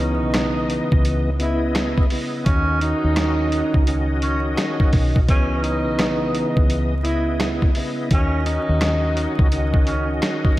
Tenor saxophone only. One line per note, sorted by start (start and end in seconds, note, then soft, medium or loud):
0.00 1.02 D#4 medium
1.42 1.61 E4 medium
2.45 2.78 C#4 medium
2.82 3.84 D#4 medium
4.22 4.42 C#4 medium
5.30 5.61 C#4 loud
5.62 6.65 D#4 medium
7.05 7.25 E4 medium
8.14 8.44 C#4 loud
8.46 9.48 D#4 medium
9.87 10.07 C#4 medium